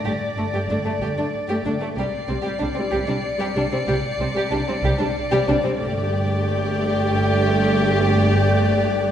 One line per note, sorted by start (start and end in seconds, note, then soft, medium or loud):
0.00 1.92 D5 soft
0.00 1.61 A6 soft
0.00 0.96 A#6 soft
0.04 0.11 G1 soft
0.04 0.11 G2 medium
0.04 0.12 A3 soft
0.04 0.12 G4 soft
0.36 0.43 G1 soft
0.36 0.43 G2 soft
0.36 0.44 A3 soft
0.52 0.59 G2 soft
0.52 0.60 A3 soft
0.52 0.60 G4 soft
0.68 0.74 G1 soft
0.68 0.75 G2 soft
0.68 0.76 A3 soft
0.68 0.76 D4 soft
0.85 0.91 G2 soft
0.85 0.91 A3 soft
0.85 0.92 A3 soft
0.99 1.06 G1 medium
0.99 1.06 G2 medium
0.99 1.09 A3 soft
0.99 1.08 G4 soft
1.16 1.23 G2 soft
1.16 1.24 A3 soft
1.16 1.24 D4 soft
1.48 1.54 G2 soft
1.48 1.56 A3 medium
1.48 1.55 G4 soft
1.64 1.70 G1 soft
1.64 1.71 G2 soft
1.64 1.73 A3 soft
1.64 1.71 D4 soft
1.80 1.86 G2 soft
1.80 1.87 A3 soft
1.80 1.89 A3 soft
1.96 2.02 C2 medium
1.96 2.03 C3 medium
1.96 2.04 G3 medium
1.96 2.03 G4 medium
1.96 5.75 D5 soft
1.96 5.43 C7 soft
2.28 2.34 C2 soft
2.28 2.34 C3 soft
2.28 2.37 G3 soft
2.28 2.35 C4 soft
2.43 2.50 C3 soft
2.43 2.52 G3 medium
2.43 2.50 G4 medium
2.60 2.67 C2 soft
2.60 2.66 C3 soft
2.60 2.69 G3 soft
2.60 2.66 D4 soft
2.60 5.44 C#7 soft
2.75 2.83 C3 soft
2.75 2.85 G3 soft
2.75 2.82 C4 soft
2.92 2.98 C2 medium
2.92 2.99 C3 medium
2.92 2.99 G3 medium
2.92 2.98 G4 medium
3.08 3.15 C3 soft
3.08 3.15 G3 soft
3.08 3.15 D4 soft
3.40 3.47 C3 medium
3.40 3.47 G3 medium
3.40 3.46 G4 medium
3.55 3.62 C2 soft
3.55 3.62 C3 soft
3.55 3.62 G3 soft
3.55 3.62 D4 soft
3.72 3.78 C3 soft
3.72 3.78 G3 soft
3.72 3.78 C4 soft
3.87 3.94 C2 medium
3.87 3.94 C3 medium
3.87 3.94 G3 medium
3.87 3.94 G4 medium
4.19 4.25 C2 medium
4.19 4.27 C3 soft
4.19 4.26 G3 soft
4.19 4.27 C4 soft
4.35 4.42 C3 medium
4.35 4.41 G3 medium
4.35 4.42 G4 medium
4.51 4.58 C2 soft
4.51 4.59 C3 soft
4.51 4.58 G3 soft
4.51 4.58 D4 soft
4.68 4.74 C3 soft
4.68 4.74 G3 soft
4.68 4.74 C4 soft
4.83 4.89 C2 medium
4.83 4.90 C3 medium
4.83 4.90 G3 medium
4.83 4.90 G4 medium
4.99 5.06 C3 soft
4.99 5.06 G3 medium
4.99 5.05 D4 medium
5.31 5.38 C3 medium
5.31 5.38 G3 medium
5.31 5.37 G4 medium
5.47 5.53 C2 medium
5.47 5.54 C3 medium
5.47 5.54 G3 soft
5.47 5.54 D4 soft
5.63 5.70 C3 soft
5.63 5.70 G3 medium
5.63 5.70 C4 medium
5.79 9.12 G1 medium
5.79 9.12 G2 medium
5.79 9.12 A3 medium
5.79 9.12 G4 medium
5.79 9.12 D5 medium
5.79 9.12 D6 soft
6.44 8.57 G6 soft
8.57 9.12 F#6 soft